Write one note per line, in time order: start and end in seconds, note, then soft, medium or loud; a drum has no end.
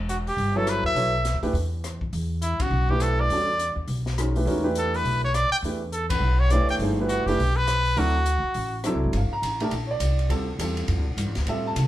0.00 0.34 E1 medium
0.09 0.17 F#4 medium
0.09 closed hi-hat soft
0.27 0.59 G4 medium
0.27 open hi-hat soft
0.37 0.81 G1 medium
0.37 open hi-hat soft
0.55 0.94 F#3 medium
0.55 0.94 B3 medium
0.55 0.94 E4 medium
0.55 0.94 A4 medium
0.55 0.71 A4 medium
0.55 0.94 C#5 medium
0.67 0.86 B4 medium
0.67 cross-stick medium
0.67 closed hi-hat medium
0.83 0.94 D#2 medium
0.83 1.40 E5 medium
0.94 1.31 B1 medium
0.94 1.12 F#3 medium
0.94 1.12 B3 medium
0.94 1.12 E4 medium
0.94 1.12 A4 medium
0.94 1.12 C#5 medium
0.94 open hi-hat soft
1.25 snare soft
1.25 closed hi-hat medium
1.34 1.43 D2 medium
1.43 1.52 D#2 medium
1.43 1.53 E3 medium
1.43 1.53 A3 medium
1.43 1.53 D4 medium
1.43 1.53 G4 medium
1.43 1.53 B4 medium
1.43 kick soft
1.43 open hi-hat soft
1.53 2.09 E2 medium
1.53 open hi-hat soft
1.84 cross-stick medium
1.84 closed hi-hat soft
2.01 kick medium
2.13 2.56 E2 medium
2.13 open hi-hat soft
2.42 2.63 E4 medium
2.42 closed hi-hat medium
2.60 2.92 F#4 medium
2.60 muted upright bass stroke soft
2.60 kick medium
2.60 ride medium
2.70 3.26 B1 medium
2.89 3.28 E3 medium
2.89 3.28 A3 medium
2.89 3.28 D4 medium
2.89 3.04 G4 medium
2.89 3.28 G4 medium
2.89 3.28 B4 medium
2.89 kick medium
3.00 3.22 A4 medium
3.00 cross-stick medium
3.00 closed hi-hat medium
3.20 3.78 D5 loud
3.29 3.73 E2 medium
3.29 3.47 D3 medium
3.29 3.47 G3 soft
3.29 3.47 C#4 soft
3.29 3.47 F#4 soft
3.29 3.47 A4 medium
3.29 open hi-hat soft
3.59 closed hi-hat medium
3.76 3.87 D#2 medium
3.88 4.43 B1 medium
3.88 open hi-hat soft
4.06 snare soft
4.18 4.34 D#3 soft
4.18 4.34 G#3 soft
4.18 4.34 C#4 soft
4.18 4.34 F#4 soft
4.18 4.34 A#4 medium
4.18 cross-stick medium
4.18 closed hi-hat medium
4.36 4.61 E3 medium
4.36 4.61 A3 medium
4.36 4.61 D4 soft
4.36 4.61 G4 soft
4.36 4.62 B4 medium
4.36 open hi-hat soft
4.45 5.01 E2 medium
4.45 4.62 D#3 medium
4.45 4.63 G#3 medium
4.45 4.63 C#4 medium
4.45 4.62 F#4 medium
4.45 4.63 A#4 medium
4.45 open hi-hat soft
4.63 5.27 E3 medium
4.63 5.27 A3 medium
4.63 5.27 D4 medium
4.63 5.27 G4 medium
4.63 5.27 B4 medium
4.75 4.97 A4 medium
4.75 closed hi-hat medium
4.94 5.24 B4 medium
4.94 open hi-hat soft
5.04 5.48 B1 medium
5.04 open hi-hat soft
5.24 5.36 C#5 medium
5.34 5.51 D5 medium
5.34 cross-stick medium
5.34 closed hi-hat medium
5.52 5.57 G5 medium
5.52 open hi-hat soft
5.62 6.18 E2 medium
5.62 5.80 E3 medium
5.62 5.80 A3 medium
5.62 5.80 D4 soft
5.62 5.80 G4 medium
5.62 5.80 B4 medium
5.62 open hi-hat soft
5.92 6.09 A4 medium
5.92 closed hi-hat soft
6.10 6.41 B4 medium
6.10 kick medium
6.10 ride medium
6.20 6.57 B1 medium
6.40 6.53 C#5 medium
6.50 6.95 E3 medium
6.50 6.95 A3 medium
6.50 6.95 D4 medium
6.50 6.95 G4 medium
6.50 6.95 C#5 medium
6.50 6.69 D5 medium
6.50 cross-stick medium
6.50 closed hi-hat medium
6.69 6.78 D#2 medium
6.69 6.75 G5 medium
6.69 open hi-hat soft
6.79 7.23 G1 medium
6.79 6.97 F3 medium
6.79 6.97 A#3 soft
6.79 6.97 D#4 medium
6.79 6.97 G#4 medium
6.79 6.97 C5 medium
6.79 open hi-hat soft
7.00 7.24 E3 medium
7.00 7.25 A3 medium
7.00 7.25 D4 medium
7.00 7.25 G4 medium
7.00 7.25 B4 medium
7.09 7.28 F#4 medium
7.09 closed hi-hat medium
7.26 7.37 F#1 medium
7.26 7.38 E3 medium
7.26 7.38 A3 medium
7.26 7.38 D4 medium
7.26 7.58 G4 medium
7.26 7.38 G4 medium
7.26 7.38 B4 medium
7.26 open hi-hat soft
7.37 7.93 B1 medium
7.37 open hi-hat soft
7.56 8.00 B4 loud
7.68 cross-stick medium
7.68 closed hi-hat medium
7.85 open hi-hat soft
7.96 8.40 D2 loud
7.96 8.13 F#3 medium
7.96 8.13 C4 medium
7.96 8.13 D4 medium
7.96 8.13 E4 medium
7.96 8.85 F#4 medium
7.96 8.13 A4 medium
7.96 open hi-hat soft
8.26 closed hi-hat medium
8.43 muted upright bass stroke soft
8.54 8.91 A1 medium
8.54 open hi-hat soft
8.84 9.14 F#3 medium
8.84 9.14 C4 medium
8.84 9.14 D4 medium
8.84 9.15 E4 medium
8.84 9.14 A4 medium
8.84 cross-stick medium
8.84 closed hi-hat medium
8.94 9.03 C2 medium
9.03 9.12 G#1 medium
9.13 9.30 G1 medium
9.13 ride medium
9.17 9.33 F5 medium
9.31 9.59 A#5 loud
9.31 muted upright bass stroke soft
9.42 9.71 A1 medium
9.42 hi-hat pedal soft
9.42 ride medium
9.60 9.71 A3 medium
9.60 9.71 D4 medium
9.60 9.71 G4 medium
9.60 9.72 A#4 medium
9.60 9.89 A5 medium
9.60 ride soft
9.71 9.99 A#1 medium
9.71 ride medium
9.87 9.89 C#5 medium
9.87 10.28 D5 medium
10.00 10.28 C2 medium
10.00 hi-hat pedal medium
10.00 ride medium
10.19 ride soft
10.29 10.58 D2 medium
10.29 10.46 G3 medium
10.29 10.46 C4 medium
10.29 10.46 F4 medium
10.29 10.47 A4 medium
10.29 ride medium
10.59 10.87 E2 medium
10.59 11.03 G3 medium
10.59 11.03 C4 soft
10.59 11.03 F4 medium
10.59 11.04 A4 medium
10.59 hi-hat pedal medium
10.59 ride medium
10.77 ride soft
10.88 10.98 F2 medium
10.88 ride medium
10.98 11.07 D2 medium
11.07 11.16 A#1 soft
11.17 11.26 G2 medium
11.17 hi-hat pedal medium
11.17 ride medium
11.26 11.36 F2 medium
11.35 11.45 D2 medium
11.35 snare soft
11.35 ride soft
11.46 11.75 A2 medium
11.46 11.88 G3 medium
11.46 11.88 C4 medium
11.46 11.88 F4 medium
11.46 11.88 A4 medium
11.46 11.66 E5 medium
11.46 ride medium
11.67 11.88 A5 loud
11.76 11.88 C3 medium
11.76 hi-hat pedal soft
11.76 ride medium